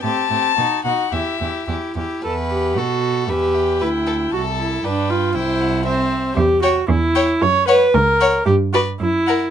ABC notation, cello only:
X:1
M:2/4
L:1/8
Q:1/4=115
K:Em
V:1 name="Cello" clef=bass
A,, A,, B,, B,, | E,, E,, E,, E,, | E,,2 B,,2 | E,,2 D,,2 |
C,,2 G,,2 | C,,4 | [K:F#phr] E,,2 E,,2 | F,,2 C,,2 |
G,,2 F,,2 |]